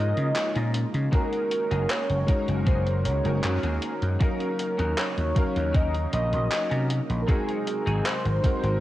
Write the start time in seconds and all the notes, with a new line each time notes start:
Already playing: G#2 C#3 F3 G#3 A#3 C#4 D#4 F4 A#4 D#5
0.17 C#3, closed hi-hat
0.36 clap, closed hi-hat
0.56 A#2 C#4 D#4 F4 A#4, closed hi-hat
0.74 closed hi-hat
0.94 C#3, closed hi-hat
1.11 D#3 G#3 A#3 C#4 D#4 F#4 G#4 A#4, kick, closed hi-hat
1.33 closed hi-hat
1.51 closed hi-hat
1.71 F#1 A#3 D#4 F#4 G#4, closed hi-hat
1.90 C#5, clap, closed hi-hat
2.10 F#1, closed hi-hat
2.27 G#3 C#4 D#4 F#4 A#4, muted clean electric guitar stroke, kick, closed hi-hat
2.48 F#1, closed hi-hat
2.66 A#3 D#4 F#4 G#4 C5, kick, closed hi-hat
2.87 closed hi-hat
3.05 C#2 C#5, muted clean electric guitar stroke, closed hi-hat
3.24 F#1 G#3 C#4 D#4 F#4 A#4, closed hi-hat
3.44 F#2, clap, closed hi-hat
3.63 D#2 A#3 D#4 F#4 G#4, closed hi-hat
3.82 closed hi-hat
4.02 F#2, closed hi-hat
4.19 C#3 F#3 C#4 D#4 F#4 A#4 F5, kick, closed hi-hat
4.40 closed hi-hat
4.59 closed hi-hat
4.78 D#2 C#4 D#4 F#4 A#4, closed hi-hat
4.98 C#5, clap, closed hi-hat
5.18 D#2, closed hi-hat
5.35 F#3 C#4 D#4 A#4 F5, muted clean electric guitar stroke, kick, closed hi-hat
5.56 D#2, closed hi-hat
5.74 C#4 D#4 F#4 A#4 D#5, kick, closed hi-hat
5.95 closed hi-hat
6.12 A#1 D#5, muted clean electric guitar stroke, closed hi-hat
6.33 A#1, closed hi-hat
6.52 clap, closed hi-hat
6.70 C3 C#4 D#4 F#4 A#4, closed hi-hat
6.90 closed hi-hat
7.10 A#1, closed hi-hat
7.22 A#4
7.27 C3 G#3 C4 D#4 F#4 G#4 A#4, kick, closed hi-hat
7.49 closed hi-hat
7.67 closed hi-hat
7.86 G#1 C4 D#4 F#4 G#4, closed hi-hat
8.05 C5, clap, closed hi-hat
8.25 G#1, closed hi-hat
8.43 G#3 C4 D#4 F#4 A#4, muted clean electric guitar stroke, kick, closed hi-hat
8.63 G#1, closed hi-hat